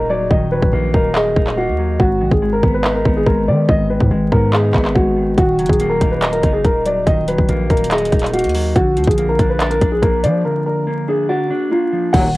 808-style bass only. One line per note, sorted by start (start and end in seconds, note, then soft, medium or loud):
0.00 0.29 D#1 loud
0.31 0.61 D#1 loud
0.62 0.72 D#1 loud
0.73 0.93 A#1 loud
0.94 1.35 D#1 loud
1.36 1.70 D#1 loud
1.68 1.98 D#2 medium
2.00 2.22 G#1 loud
2.21 2.31 B1 loud
2.31 2.62 G#1 loud
2.63 3.04 G#1 loud
3.05 3.26 G#1 loud
3.26 3.49 G#1 loud
3.48 3.68 D#3 loud
3.69 3.99 G#1 loud
4.01 4.11 G#2 loud
4.11 4.31 G#1 loud
4.32 4.73 G#2 loud
4.74 4.95 G#1 loud
4.96 5.36 G#1 loud
5.38 5.60 D#1 loud
5.59 5.69 F#1 loud
5.69 6.00 D#1 loud
6.01 6.42 D#1 loud
6.43 6.64 F#1 loud
6.64 7.05 D#1 loud
7.07 7.37 D#1 loud
7.38 7.48 D#1 loud
7.49 7.69 A#1 loud
7.70 8.11 D#1 loud
8.12 8.46 D#1 loud
8.44 8.74 D#2 loud
8.76 8.98 A#1 loud
8.97 9.07 D2 loud
9.08 9.38 A#1 loud
9.39 9.80 A#1 loud
9.81 10.02 A#1 loud
10.03 10.25 A#1 loud
10.24 10.44 F3 loud
12.14 12.36 D#1 loud